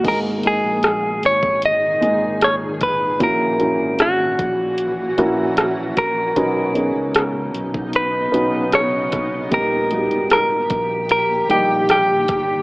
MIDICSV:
0, 0, Header, 1, 6, 480
1, 0, Start_track
1, 0, Tempo, 789474
1, 30, Time_signature, 4, 2, 24, 8
1, 7675, End_track
2, 0, Start_track
2, 0, Title_t, "Clean electric guitar"
2, 0, Program_c, 0, 27
2, 50, Note_on_c, 0, 70, 74
2, 112, Note_off_c, 0, 70, 0
2, 287, Note_on_c, 0, 68, 76
2, 764, Note_off_c, 0, 68, 0
2, 766, Note_on_c, 0, 73, 69
2, 982, Note_off_c, 0, 73, 0
2, 1006, Note_on_c, 0, 75, 89
2, 1484, Note_off_c, 0, 75, 0
2, 1486, Note_on_c, 0, 73, 84
2, 1549, Note_off_c, 0, 73, 0
2, 1721, Note_on_c, 0, 71, 69
2, 1963, Note_off_c, 0, 71, 0
2, 1967, Note_on_c, 0, 70, 75
2, 2443, Note_on_c, 0, 66, 76
2, 2452, Note_off_c, 0, 70, 0
2, 3203, Note_off_c, 0, 66, 0
2, 3203, Note_on_c, 0, 64, 76
2, 3612, Note_off_c, 0, 64, 0
2, 3639, Note_on_c, 0, 70, 77
2, 4837, Note_off_c, 0, 70, 0
2, 4840, Note_on_c, 0, 71, 91
2, 5317, Note_off_c, 0, 71, 0
2, 5319, Note_on_c, 0, 73, 86
2, 5798, Note_off_c, 0, 73, 0
2, 5800, Note_on_c, 0, 70, 77
2, 6251, Note_off_c, 0, 70, 0
2, 6281, Note_on_c, 0, 70, 80
2, 6751, Note_off_c, 0, 70, 0
2, 6759, Note_on_c, 0, 70, 82
2, 6995, Note_off_c, 0, 70, 0
2, 6997, Note_on_c, 0, 67, 73
2, 7217, Note_off_c, 0, 67, 0
2, 7243, Note_on_c, 0, 67, 75
2, 7675, Note_off_c, 0, 67, 0
2, 7675, End_track
3, 0, Start_track
3, 0, Title_t, "Upright piano"
3, 0, Program_c, 1, 0
3, 0, Control_c, 1, 64, 127
3, 21, Note_on_c, 1, 56, 65
3, 24, Note_on_c, 1, 58, 59
3, 28, Note_on_c, 1, 44, 50
3, 29, Note_on_c, 1, 63, 51
3, 32, Note_on_c, 1, 68, 64
3, 37, Control_c, 1, 64, 0
3, 137, Control_c, 1, 64, 127
3, 254, Note_off_c, 1, 56, 0
3, 255, Note_off_c, 1, 58, 0
3, 258, Note_off_c, 1, 63, 0
3, 259, Note_off_c, 1, 68, 0
3, 267, Note_on_c, 1, 56, 53
3, 270, Note_on_c, 1, 58, 48
3, 273, Note_on_c, 1, 63, 49
3, 274, Note_on_c, 1, 68, 53
3, 724, Note_off_c, 1, 44, 0
3, 1180, Note_off_c, 1, 56, 0
3, 1182, Note_off_c, 1, 58, 0
3, 1183, Note_off_c, 1, 63, 0
3, 1184, Note_off_c, 1, 68, 0
3, 1221, Note_on_c, 1, 56, 64
3, 1224, Note_on_c, 1, 46, 49
3, 1228, Note_on_c, 1, 63, 53
3, 1231, Note_on_c, 1, 68, 65
3, 1909, Note_off_c, 1, 56, 0
3, 1911, Note_off_c, 1, 46, 0
3, 1913, Note_off_c, 1, 63, 0
3, 1914, Note_off_c, 1, 68, 0
3, 1941, Note_on_c, 1, 58, 64
3, 1943, Note_on_c, 1, 46, 51
3, 1943, Note_on_c, 1, 61, 59
3, 1946, Note_on_c, 1, 64, 57
3, 1949, Note_on_c, 1, 66, 67
3, 1958, Control_c, 1, 64, 0
3, 2049, Control_c, 1, 64, 127
3, 2173, Note_off_c, 1, 58, 0
3, 2175, Note_off_c, 1, 61, 0
3, 2176, Note_off_c, 1, 64, 0
3, 2177, Note_off_c, 1, 66, 0
3, 2182, Note_on_c, 1, 58, 49
3, 2186, Note_on_c, 1, 61, 51
3, 2190, Note_on_c, 1, 64, 54
3, 2193, Note_on_c, 1, 66, 58
3, 2642, Note_off_c, 1, 46, 0
3, 3098, Note_off_c, 1, 58, 0
3, 3100, Note_off_c, 1, 61, 0
3, 3102, Note_off_c, 1, 64, 0
3, 3104, Note_off_c, 1, 66, 0
3, 3146, Note_on_c, 1, 58, 71
3, 3148, Note_on_c, 1, 61, 67
3, 3152, Note_on_c, 1, 64, 65
3, 3155, Note_on_c, 1, 66, 88
3, 3832, Note_off_c, 1, 58, 0
3, 3833, Note_off_c, 1, 61, 0
3, 3835, Note_off_c, 1, 64, 0
3, 3836, Note_off_c, 1, 66, 0
3, 3868, Note_on_c, 1, 59, 66
3, 3868, Note_on_c, 1, 61, 57
3, 3870, Note_on_c, 1, 47, 58
3, 3871, Note_on_c, 1, 63, 53
3, 3876, Note_on_c, 1, 66, 68
3, 3879, Control_c, 1, 64, 0
3, 3973, Control_c, 1, 64, 127
3, 4090, Note_off_c, 1, 59, 0
3, 4095, Note_off_c, 1, 61, 0
3, 4099, Note_off_c, 1, 63, 0
3, 4100, Note_on_c, 1, 59, 53
3, 4101, Note_off_c, 1, 66, 0
3, 4104, Note_on_c, 1, 61, 48
3, 4109, Note_on_c, 1, 63, 48
3, 4111, Note_on_c, 1, 68, 53
3, 4565, Note_off_c, 1, 47, 0
3, 5017, Note_off_c, 1, 59, 0
3, 5019, Note_off_c, 1, 61, 0
3, 5021, Note_off_c, 1, 63, 0
3, 5023, Note_off_c, 1, 68, 0
3, 5058, Note_on_c, 1, 59, 66
3, 5062, Note_on_c, 1, 61, 55
3, 5066, Note_on_c, 1, 63, 56
3, 5068, Note_on_c, 1, 66, 66
3, 5748, Note_off_c, 1, 59, 0
3, 5750, Note_off_c, 1, 61, 0
3, 5752, Note_off_c, 1, 63, 0
3, 5753, Note_off_c, 1, 66, 0
3, 5781, Note_on_c, 1, 55, 58
3, 5785, Note_on_c, 1, 58, 59
3, 5786, Note_on_c, 1, 46, 53
3, 5787, Note_on_c, 1, 63, 60
3, 5789, Note_on_c, 1, 67, 71
3, 5798, Control_c, 1, 64, 0
3, 5895, Control_c, 1, 64, 127
3, 6013, Note_off_c, 1, 55, 0
3, 6015, Note_off_c, 1, 58, 0
3, 6016, Note_off_c, 1, 63, 0
3, 6017, Note_off_c, 1, 67, 0
3, 6024, Note_on_c, 1, 55, 51
3, 6027, Note_on_c, 1, 58, 50
3, 6030, Note_on_c, 1, 63, 51
3, 6034, Note_on_c, 1, 66, 49
3, 6070, Note_on_c, 1, 67, 59
3, 6071, Note_off_c, 1, 66, 0
3, 6484, Note_off_c, 1, 46, 0
3, 6939, Note_off_c, 1, 55, 0
3, 6941, Note_off_c, 1, 58, 0
3, 6942, Note_off_c, 1, 63, 0
3, 6962, Note_off_c, 1, 67, 0
3, 6986, Note_on_c, 1, 55, 53
3, 6989, Note_on_c, 1, 58, 53
3, 6992, Note_on_c, 1, 63, 51
3, 6993, Note_on_c, 1, 67, 67
3, 7672, Note_off_c, 1, 55, 0
3, 7674, Note_off_c, 1, 58, 0
3, 7675, Note_off_c, 1, 63, 0
3, 7675, Note_off_c, 1, 67, 0
3, 7675, End_track
4, 0, Start_track
4, 0, Title_t, "Ambient pad"
4, 0, Program_c, 2, 92
4, 31, Note_on_c, 2, 46, 51
4, 32, Note_on_c, 2, 51, 69
4, 36, Note_on_c, 2, 68, 74
4, 1932, Note_off_c, 2, 51, 0
4, 1934, Note_off_c, 2, 68, 0
4, 1943, Note_on_c, 2, 66, 79
4, 1946, Note_on_c, 2, 52, 66
4, 3846, Note_off_c, 2, 46, 0
4, 3847, Note_off_c, 2, 66, 0
4, 3849, Note_off_c, 2, 52, 0
4, 3872, Note_on_c, 2, 63, 73
4, 3874, Note_on_c, 2, 49, 63
4, 3874, Note_on_c, 2, 59, 54
4, 5772, Note_off_c, 2, 63, 0
4, 5773, Note_off_c, 2, 49, 0
4, 5773, Note_off_c, 2, 59, 0
4, 5784, Note_on_c, 2, 51, 62
4, 5784, Note_on_c, 2, 67, 75
4, 5785, Note_on_c, 2, 46, 61
4, 7675, Note_off_c, 2, 46, 0
4, 7675, Note_off_c, 2, 51, 0
4, 7675, Note_off_c, 2, 67, 0
4, 7675, End_track
5, 0, Start_track
5, 0, Title_t, "Fretless electric bass"
5, 0, Program_c, 3, 35
5, 29, Note_on_c, 3, 32, 80
5, 365, Note_off_c, 3, 32, 0
5, 390, Note_on_c, 3, 34, 73
5, 726, Note_off_c, 3, 34, 0
5, 748, Note_on_c, 3, 32, 69
5, 1205, Note_off_c, 3, 32, 0
5, 1228, Note_on_c, 3, 32, 76
5, 1925, Note_off_c, 3, 32, 0
5, 1948, Note_on_c, 3, 34, 86
5, 2285, Note_off_c, 3, 34, 0
5, 2308, Note_on_c, 3, 32, 79
5, 2645, Note_off_c, 3, 32, 0
5, 2671, Note_on_c, 3, 34, 74
5, 3126, Note_off_c, 3, 34, 0
5, 3148, Note_on_c, 3, 34, 79
5, 3605, Note_off_c, 3, 34, 0
5, 3632, Note_on_c, 3, 34, 72
5, 3854, Note_off_c, 3, 34, 0
5, 3869, Note_on_c, 3, 35, 90
5, 4205, Note_off_c, 3, 35, 0
5, 4231, Note_on_c, 3, 37, 74
5, 4566, Note_off_c, 3, 37, 0
5, 4586, Note_on_c, 3, 35, 69
5, 5044, Note_off_c, 3, 35, 0
5, 5067, Note_on_c, 3, 35, 67
5, 5764, Note_off_c, 3, 35, 0
5, 5789, Note_on_c, 3, 34, 72
5, 6149, Note_off_c, 3, 34, 0
5, 6149, Note_on_c, 3, 32, 85
5, 6485, Note_off_c, 3, 32, 0
5, 6509, Note_on_c, 3, 34, 74
5, 6965, Note_off_c, 3, 34, 0
5, 6989, Note_on_c, 3, 34, 83
5, 7445, Note_off_c, 3, 34, 0
5, 7472, Note_on_c, 3, 31, 75
5, 7675, Note_off_c, 3, 31, 0
5, 7675, End_track
6, 0, Start_track
6, 0, Title_t, "Drums"
6, 28, Note_on_c, 9, 36, 79
6, 28, Note_on_c, 9, 42, 66
6, 28, Note_on_c, 9, 49, 71
6, 88, Note_off_c, 9, 42, 0
6, 89, Note_off_c, 9, 36, 0
6, 89, Note_off_c, 9, 49, 0
6, 264, Note_on_c, 9, 42, 49
6, 324, Note_off_c, 9, 42, 0
6, 504, Note_on_c, 9, 42, 70
6, 511, Note_on_c, 9, 37, 90
6, 564, Note_off_c, 9, 42, 0
6, 572, Note_off_c, 9, 37, 0
6, 748, Note_on_c, 9, 42, 63
6, 809, Note_off_c, 9, 42, 0
6, 868, Note_on_c, 9, 36, 71
6, 929, Note_off_c, 9, 36, 0
6, 985, Note_on_c, 9, 42, 75
6, 1046, Note_off_c, 9, 42, 0
6, 1231, Note_on_c, 9, 42, 58
6, 1291, Note_off_c, 9, 42, 0
6, 1468, Note_on_c, 9, 42, 77
6, 1474, Note_on_c, 9, 37, 86
6, 1529, Note_off_c, 9, 42, 0
6, 1535, Note_off_c, 9, 37, 0
6, 1706, Note_on_c, 9, 42, 67
6, 1710, Note_on_c, 9, 36, 86
6, 1710, Note_on_c, 9, 37, 29
6, 1767, Note_off_c, 9, 42, 0
6, 1770, Note_off_c, 9, 37, 0
6, 1771, Note_off_c, 9, 36, 0
6, 1947, Note_on_c, 9, 42, 80
6, 1948, Note_on_c, 9, 36, 89
6, 2008, Note_off_c, 9, 42, 0
6, 2009, Note_off_c, 9, 36, 0
6, 2187, Note_on_c, 9, 42, 52
6, 2248, Note_off_c, 9, 42, 0
6, 2424, Note_on_c, 9, 42, 73
6, 2432, Note_on_c, 9, 37, 92
6, 2485, Note_off_c, 9, 42, 0
6, 2493, Note_off_c, 9, 37, 0
6, 2669, Note_on_c, 9, 36, 77
6, 2669, Note_on_c, 9, 42, 65
6, 2729, Note_off_c, 9, 42, 0
6, 2730, Note_off_c, 9, 36, 0
6, 2905, Note_on_c, 9, 42, 79
6, 2966, Note_off_c, 9, 42, 0
6, 3149, Note_on_c, 9, 42, 58
6, 3210, Note_off_c, 9, 42, 0
6, 3387, Note_on_c, 9, 42, 74
6, 3393, Note_on_c, 9, 37, 82
6, 3448, Note_off_c, 9, 42, 0
6, 3454, Note_off_c, 9, 37, 0
6, 3629, Note_on_c, 9, 42, 69
6, 3631, Note_on_c, 9, 36, 75
6, 3632, Note_on_c, 9, 37, 32
6, 3690, Note_off_c, 9, 42, 0
6, 3692, Note_off_c, 9, 36, 0
6, 3693, Note_off_c, 9, 37, 0
6, 3868, Note_on_c, 9, 42, 73
6, 3869, Note_on_c, 9, 36, 95
6, 3929, Note_off_c, 9, 42, 0
6, 3930, Note_off_c, 9, 36, 0
6, 4106, Note_on_c, 9, 42, 57
6, 4167, Note_off_c, 9, 42, 0
6, 4344, Note_on_c, 9, 42, 77
6, 4352, Note_on_c, 9, 37, 94
6, 4405, Note_off_c, 9, 42, 0
6, 4413, Note_off_c, 9, 37, 0
6, 4587, Note_on_c, 9, 42, 59
6, 4648, Note_off_c, 9, 42, 0
6, 4708, Note_on_c, 9, 36, 77
6, 4769, Note_off_c, 9, 36, 0
6, 4822, Note_on_c, 9, 42, 77
6, 4883, Note_off_c, 9, 42, 0
6, 5070, Note_on_c, 9, 42, 65
6, 5131, Note_off_c, 9, 42, 0
6, 5304, Note_on_c, 9, 42, 79
6, 5310, Note_on_c, 9, 37, 81
6, 5365, Note_off_c, 9, 42, 0
6, 5371, Note_off_c, 9, 37, 0
6, 5546, Note_on_c, 9, 42, 67
6, 5549, Note_on_c, 9, 37, 34
6, 5550, Note_on_c, 9, 36, 76
6, 5607, Note_off_c, 9, 42, 0
6, 5610, Note_off_c, 9, 37, 0
6, 5611, Note_off_c, 9, 36, 0
6, 5786, Note_on_c, 9, 42, 75
6, 5788, Note_on_c, 9, 36, 90
6, 5847, Note_off_c, 9, 42, 0
6, 5849, Note_off_c, 9, 36, 0
6, 6023, Note_on_c, 9, 42, 51
6, 6084, Note_off_c, 9, 42, 0
6, 6147, Note_on_c, 9, 42, 44
6, 6208, Note_off_c, 9, 42, 0
6, 6264, Note_on_c, 9, 42, 75
6, 6271, Note_on_c, 9, 37, 97
6, 6324, Note_off_c, 9, 42, 0
6, 6332, Note_off_c, 9, 37, 0
6, 6505, Note_on_c, 9, 42, 65
6, 6508, Note_on_c, 9, 36, 85
6, 6565, Note_off_c, 9, 42, 0
6, 6569, Note_off_c, 9, 36, 0
6, 6745, Note_on_c, 9, 42, 79
6, 6806, Note_off_c, 9, 42, 0
6, 6990, Note_on_c, 9, 42, 57
6, 7051, Note_off_c, 9, 42, 0
6, 7228, Note_on_c, 9, 42, 77
6, 7234, Note_on_c, 9, 37, 74
6, 7289, Note_off_c, 9, 42, 0
6, 7295, Note_off_c, 9, 37, 0
6, 7468, Note_on_c, 9, 42, 63
6, 7471, Note_on_c, 9, 37, 29
6, 7472, Note_on_c, 9, 36, 88
6, 7529, Note_off_c, 9, 42, 0
6, 7532, Note_off_c, 9, 37, 0
6, 7533, Note_off_c, 9, 36, 0
6, 7675, End_track
0, 0, End_of_file